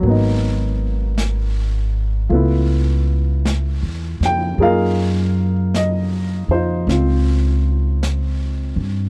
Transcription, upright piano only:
0, 0, Header, 1, 2, 480
1, 0, Start_track
1, 0, Tempo, 1138520
1, 15, Time_signature, 4, 2, 24, 8
1, 3833, End_track
2, 0, Start_track
2, 0, Title_t, "Upright piano"
2, 0, Program_c, 0, 0
2, 0, Control_c, 0, 64, 127
2, 0, Note_on_c, 0, 54, 40
2, 12, Note_on_c, 0, 58, 38
2, 21, Control_c, 0, 64, 0
2, 27, Note_on_c, 0, 59, 37
2, 42, Note_on_c, 0, 63, 44
2, 104, Control_c, 0, 64, 127
2, 963, Note_off_c, 0, 54, 0
2, 967, Note_on_c, 0, 65, 45
2, 971, Note_off_c, 0, 58, 0
2, 972, Note_on_c, 0, 57, 39
2, 974, Note_off_c, 0, 59, 0
2, 977, Control_c, 0, 64, 0
2, 980, Note_on_c, 0, 59, 42
2, 986, Note_off_c, 0, 63, 0
2, 988, Note_on_c, 0, 64, 46
2, 1042, Control_c, 0, 64, 127
2, 1793, Note_on_c, 0, 79, 77
2, 1933, Note_off_c, 0, 65, 0
2, 1936, Note_off_c, 0, 57, 0
2, 1939, Note_on_c, 0, 68, 43
2, 1940, Note_off_c, 0, 59, 0
2, 1940, Note_on_c, 0, 58, 44
2, 1941, Control_c, 0, 64, 0
2, 1943, Note_off_c, 0, 64, 0
2, 1944, Note_on_c, 0, 63, 43
2, 1945, Note_on_c, 0, 65, 51
2, 1948, Note_off_c, 0, 68, 0
2, 1950, Note_on_c, 0, 70, 54
2, 1950, Note_on_c, 0, 77, 80
2, 1951, Note_off_c, 0, 79, 0
2, 1954, Note_on_c, 0, 68, 53
2, 2017, Control_c, 0, 64, 127
2, 2428, Note_on_c, 0, 75, 64
2, 2439, Note_off_c, 0, 77, 0
2, 2725, Note_off_c, 0, 75, 0
2, 2744, Note_off_c, 0, 63, 0
2, 2745, Note_on_c, 0, 72, 55
2, 2747, Note_off_c, 0, 65, 0
2, 2750, Note_on_c, 0, 63, 44
2, 2753, Note_on_c, 0, 65, 39
2, 2890, Note_off_c, 0, 70, 0
2, 2892, Note_off_c, 0, 68, 0
2, 2901, Note_on_c, 0, 60, 36
2, 2909, Note_off_c, 0, 65, 0
2, 2915, Note_on_c, 0, 65, 38
2, 3683, Note_off_c, 0, 72, 0
2, 3686, Note_off_c, 0, 63, 0
2, 3833, Note_off_c, 0, 58, 0
2, 3833, Note_off_c, 0, 60, 0
2, 3833, Note_off_c, 0, 65, 0
2, 3833, End_track
0, 0, End_of_file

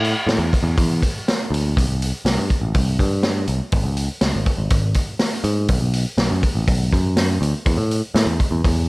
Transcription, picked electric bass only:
0, 0, Header, 1, 2, 480
1, 0, Start_track
1, 0, Tempo, 491803
1, 1716, Time_signature, 4, 2, 24, 8
1, 8674, End_track
2, 0, Start_track
2, 0, Title_t, "Picked electric bass"
2, 0, Program_c, 0, 34
2, 0, Note_on_c, 0, 45, 74
2, 132, Note_off_c, 0, 45, 0
2, 259, Note_on_c, 0, 45, 78
2, 368, Note_off_c, 0, 45, 0
2, 374, Note_on_c, 0, 40, 86
2, 496, Note_off_c, 0, 40, 0
2, 611, Note_on_c, 0, 40, 88
2, 735, Note_off_c, 0, 40, 0
2, 759, Note_on_c, 0, 40, 87
2, 983, Note_off_c, 0, 40, 0
2, 1469, Note_on_c, 0, 38, 80
2, 1698, Note_off_c, 0, 38, 0
2, 1725, Note_on_c, 0, 36, 89
2, 1825, Note_off_c, 0, 36, 0
2, 1831, Note_on_c, 0, 36, 66
2, 2060, Note_off_c, 0, 36, 0
2, 2197, Note_on_c, 0, 36, 93
2, 2310, Note_off_c, 0, 36, 0
2, 2317, Note_on_c, 0, 43, 74
2, 2430, Note_off_c, 0, 43, 0
2, 2552, Note_on_c, 0, 33, 73
2, 2668, Note_off_c, 0, 33, 0
2, 2678, Note_on_c, 0, 36, 92
2, 2904, Note_off_c, 0, 36, 0
2, 2920, Note_on_c, 0, 43, 84
2, 3370, Note_off_c, 0, 43, 0
2, 3396, Note_on_c, 0, 36, 81
2, 3510, Note_off_c, 0, 36, 0
2, 3635, Note_on_c, 0, 32, 88
2, 3742, Note_off_c, 0, 32, 0
2, 3748, Note_on_c, 0, 37, 84
2, 3978, Note_off_c, 0, 37, 0
2, 4115, Note_on_c, 0, 37, 82
2, 4229, Note_off_c, 0, 37, 0
2, 4239, Note_on_c, 0, 32, 83
2, 4351, Note_off_c, 0, 32, 0
2, 4472, Note_on_c, 0, 32, 83
2, 4587, Note_off_c, 0, 32, 0
2, 4592, Note_on_c, 0, 32, 87
2, 4820, Note_off_c, 0, 32, 0
2, 5308, Note_on_c, 0, 44, 78
2, 5537, Note_off_c, 0, 44, 0
2, 5550, Note_on_c, 0, 35, 85
2, 5663, Note_off_c, 0, 35, 0
2, 5668, Note_on_c, 0, 35, 71
2, 5897, Note_off_c, 0, 35, 0
2, 6027, Note_on_c, 0, 35, 89
2, 6144, Note_off_c, 0, 35, 0
2, 6151, Note_on_c, 0, 42, 80
2, 6266, Note_off_c, 0, 42, 0
2, 6395, Note_on_c, 0, 33, 76
2, 6508, Note_off_c, 0, 33, 0
2, 6514, Note_on_c, 0, 35, 80
2, 6739, Note_off_c, 0, 35, 0
2, 6759, Note_on_c, 0, 42, 82
2, 7207, Note_off_c, 0, 42, 0
2, 7229, Note_on_c, 0, 38, 85
2, 7344, Note_off_c, 0, 38, 0
2, 7474, Note_on_c, 0, 40, 85
2, 7580, Note_off_c, 0, 40, 0
2, 7586, Note_on_c, 0, 45, 82
2, 7814, Note_off_c, 0, 45, 0
2, 7950, Note_on_c, 0, 45, 85
2, 8057, Note_off_c, 0, 45, 0
2, 8062, Note_on_c, 0, 40, 84
2, 8180, Note_off_c, 0, 40, 0
2, 8306, Note_on_c, 0, 40, 80
2, 8422, Note_off_c, 0, 40, 0
2, 8435, Note_on_c, 0, 40, 85
2, 8659, Note_off_c, 0, 40, 0
2, 8674, End_track
0, 0, End_of_file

